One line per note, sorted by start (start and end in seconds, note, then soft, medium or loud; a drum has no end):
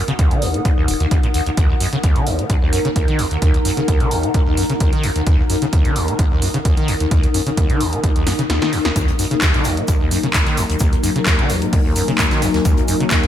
0.00 13.27 D#4 medium
0.00 13.27 A#4 medium
0.00 10.62 F#5 medium
0.00 1.74 D#6 medium
0.08 0.12 C#3 loud
0.08 closed hi-hat soft
0.19 0.33 D#2 medium
0.19 kick loud
0.19 closed hi-hat medium
0.31 0.44 D#3 loud
0.31 closed hi-hat soft
0.42 0.56 D#2 medium
0.42 open hi-hat medium
0.54 0.60 A#2 medium
0.54 closed hi-hat soft
0.65 0.72 D#2 medium
0.65 kick loud
0.65 closed hi-hat medium
0.77 0.86 D#2 medium
0.88 0.95 D#1 medium
0.88 open hi-hat loud
1.00 1.06 D#2 loud
1.00 closed hi-hat soft
1.11 1.18 D#2 medium
1.11 kick loud
1.11 closed hi-hat medium
1.23 1.27 A#2 medium
1.23 closed hi-hat soft
1.34 1.41 D#2 medium
1.34 open hi-hat medium
1.46 1.50 D#2 medium
1.46 closed hi-hat soft
1.57 1.68 D#2 medium
1.57 kick loud
1.57 closed hi-hat medium
1.70 1.73 D#2 medium
1.70 5.43 A#5 medium
1.80 1.87 F#2 medium
1.80 open hi-hat loud
1.93 1.96 C#3 loud
1.93 closed hi-hat soft
2.04 2.17 D#2 medium
2.04 kick loud
2.04 closed hi-hat medium
2.16 2.28 D#3 loud
2.16 closed hi-hat soft
2.27 2.40 D#2 medium
2.27 open hi-hat medium
2.39 2.45 A#2 medium
2.39 closed hi-hat soft
2.50 2.56 D#2 medium
2.50 kick loud
2.50 closed hi-hat medium
2.62 2.71 D#2 medium
2.73 2.80 F#2 medium
2.73 open hi-hat loud
2.85 2.89 C#3 loud
2.85 closed hi-hat soft
2.96 3.06 D#2 medium
2.96 kick loud
2.96 closed hi-hat medium
3.08 3.20 D#3 medium
3.08 closed hi-hat soft
3.19 3.26 D#2 loud
3.19 open hi-hat medium
3.31 3.37 D#2 medium
3.31 closed hi-hat soft
3.42 3.52 D#2 loud
3.42 kick loud
3.42 closed hi-hat medium
3.54 3.58 D#2 medium
3.54 closed hi-hat soft
3.65 3.72 F#2 medium
3.65 open hi-hat medium
3.77 3.81 C#3 loud
3.77 closed hi-hat soft
3.88 4.02 D#2 medium
3.88 kick loud
3.88 closed hi-hat medium
4.00 4.13 D#3 loud
4.00 closed hi-hat soft
4.11 4.25 D#2 medium
4.11 open hi-hat medium
4.23 4.29 A#2 medium
4.23 closed hi-hat soft
4.34 4.41 D#2 medium
4.34 kick loud
4.34 closed hi-hat medium
4.47 4.56 D#2 medium
4.57 4.64 F#2 medium
4.57 open hi-hat medium
4.70 4.73 C#3 loud
4.70 closed hi-hat soft
4.80 4.91 D#2 medium
4.80 kick loud
4.80 closed hi-hat medium
4.93 5.05 D#3 medium
4.93 closed hi-hat soft
5.04 5.10 D#2 loud
5.04 open hi-hat medium
5.16 5.22 D#2 medium
5.16 closed hi-hat soft
5.27 5.37 D#2 loud
5.27 kick loud
5.27 closed hi-hat medium
5.39 5.42 D#2 medium
5.39 9.13 D#6 medium
5.50 5.56 F#2 medium
5.50 open hi-hat medium
5.62 5.66 C#3 loud
5.62 closed hi-hat medium
5.73 5.86 D#2 medium
5.73 kick loud
5.73 closed hi-hat medium
5.85 5.97 D#3 loud
5.85 closed hi-hat soft
5.96 6.10 D#2 medium
5.96 open hi-hat medium
6.08 6.14 A#2 medium
6.08 closed hi-hat soft
6.19 6.26 D#2 medium
6.19 kick loud
6.19 closed hi-hat medium
6.31 6.40 D#2 medium
6.42 6.49 F#2 medium
6.42 open hi-hat medium
6.54 6.58 C#3 loud
6.54 closed hi-hat medium
6.65 6.75 D#2 medium
6.65 kick loud
6.65 closed hi-hat medium
6.77 6.90 D#3 medium
6.77 closed hi-hat soft
6.88 6.95 D#2 loud
6.88 open hi-hat medium
7.00 7.06 D#2 medium
7.00 closed hi-hat medium
7.11 7.21 D#2 loud
7.11 kick loud
7.11 closed hi-hat medium
7.23 7.27 D#2 medium
7.23 closed hi-hat soft
7.34 7.41 F#2 medium
7.34 open hi-hat loud
7.46 7.50 C#3 medium
7.46 closed hi-hat medium
7.57 7.71 D#2 medium
7.57 kick loud
7.57 closed hi-hat medium
7.70 7.82 D#3 loud
7.70 closed hi-hat soft
7.80 7.94 D#2 medium
7.80 open hi-hat medium
7.93 7.99 A#2 medium
7.93 closed hi-hat medium
8.04 8.10 D#2 medium
8.04 kick loud
8.04 closed hi-hat medium
8.16 8.25 D#2 medium
8.16 closed hi-hat soft
8.27 8.33 F#2 medium
8.27 snare medium
8.27 open hi-hat loud
8.39 8.42 C#3 loud
8.39 closed hi-hat medium
8.50 8.60 D#2 medium
8.50 snare medium
8.50 closed hi-hat medium
8.62 8.74 D#3 medium
8.62 snare medium
8.62 closed hi-hat soft
8.73 8.79 D#2 loud
8.73 open hi-hat medium
8.85 8.91 D#2 medium
8.85 snare medium
8.85 closed hi-hat medium
8.96 9.06 D#2 medium
8.96 13.27 F#3 medium
8.96 13.27 A#3 medium
8.96 13.27 D#4 medium
8.96 13.27 A#4 loud
8.96 kick loud
8.96 closed hi-hat medium
8.96 shaker medium
9.08 9.12 D#2 medium
9.08 12.82 A#5 medium
9.08 closed hi-hat soft
9.19 9.26 F#2 medium
9.19 open hi-hat loud
9.19 shaker medium
9.31 9.35 C#3 loud
9.31 closed hi-hat medium
9.41 9.56 D#2 medium
9.41 kick loud
9.41 snare loud
9.41 clap loud
9.41 closed hi-hat medium
9.41 shaker medium
9.54 9.67 D#3 loud
9.54 snare soft
9.54 closed hi-hat soft
9.64 9.79 D#2 medium
9.64 open hi-hat medium
9.64 shaker medium
9.77 9.83 A#2 medium
9.77 closed hi-hat medium
9.88 9.95 D#2 medium
9.88 kick loud
9.88 closed hi-hat medium
9.88 shaker medium
10.00 10.09 D#2 medium
10.11 10.18 F#2 medium
10.11 open hi-hat loud
10.11 shaker medium
10.23 10.27 C#3 loud
10.23 closed hi-hat medium
10.34 10.44 D#2 medium
10.34 kick loud
10.34 snare loud
10.34 clap loud
10.34 closed hi-hat medium
10.34 shaker medium
10.47 10.59 D#3 medium
10.47 12.86 G#5 medium
10.47 snare soft
10.47 closed hi-hat soft
10.57 10.64 D#2 loud
10.57 open hi-hat medium
10.57 shaker medium
10.70 10.76 D#2 medium
10.70 closed hi-hat soft
10.79 10.91 D#2 loud
10.79 kick loud
10.79 closed hi-hat medium
10.79 shaker medium
10.93 10.96 D#2 medium
10.93 closed hi-hat soft
11.03 11.10 F#2 medium
11.03 open hi-hat loud
11.03 shaker medium
11.16 11.19 C#3 loud
11.16 closed hi-hat soft
11.26 11.40 D#2 medium
11.26 kick loud
11.26 snare loud
11.26 clap loud
11.26 closed hi-hat medium
11.26 shaker medium
11.39 11.51 D#3 loud
11.39 closed hi-hat soft
11.49 11.63 D#2 medium
11.49 open hi-hat medium
11.49 shaker medium
11.62 11.68 A#2 medium
11.62 closed hi-hat soft
11.73 11.79 D#2 medium
11.73 kick loud
11.73 closed hi-hat medium
11.73 open hi-hat medium
11.85 11.94 D#2 medium
11.96 12.03 F#2 medium
11.96 open hi-hat loud
11.96 shaker medium
12.08 12.12 C#3 loud
12.08 closed hi-hat medium
12.18 12.29 D#2 medium
12.18 kick loud
12.18 snare loud
12.18 clap loud
12.18 closed hi-hat medium
12.18 shaker medium
12.31 12.44 D#3 medium
12.31 snare medium
12.31 closed hi-hat soft
12.42 12.49 D#2 loud
12.42 open hi-hat loud
12.42 shaker medium
12.54 12.60 D#2 medium
12.54 snare medium
12.54 closed hi-hat soft
12.65 12.75 D#2 loud
12.65 kick loud
12.65 closed hi-hat medium
12.65 shaker medium
12.77 12.81 D#2 medium
12.77 closed hi-hat soft
12.87 12.95 F#2 medium
12.87 13.27 G#5 medium
12.87 open hi-hat loud
12.87 shaker medium
13.00 13.04 C#3 loud
13.00 closed hi-hat soft
13.11 13.25 D#2 medium
13.11 kick loud
13.11 snare loud
13.11 clap loud
13.11 closed hi-hat medium
13.11 shaker medium
13.23 13.27 D#3 loud
13.23 snare soft
13.23 closed hi-hat soft